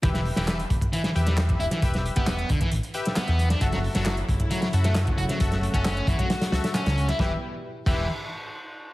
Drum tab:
CC |----------------|----------------|----------------|----------------|
HH |xxoxxxxxxxxxxxxx|xxxxxxxxxxxxxxxx|xxoxxxxxxxxxxxxx|xxxxxxxxxxxxxxxx|
CP |----x-------x---|----x-------x---|----x-------x---|----x-------x---|
SD |-o-oo----o-oo--o|-o--o------ooo-o|-o-oo----o-oo--o|-o--o---oooooo-o|
BD |o-----oo-----o--|o--o--oo--------|o-----oo-----o--|o--o--oo--------|

CC |------x---------|
HH |----------------|
CP |----------------|
SD |o---------------|
BD |o-----o---------|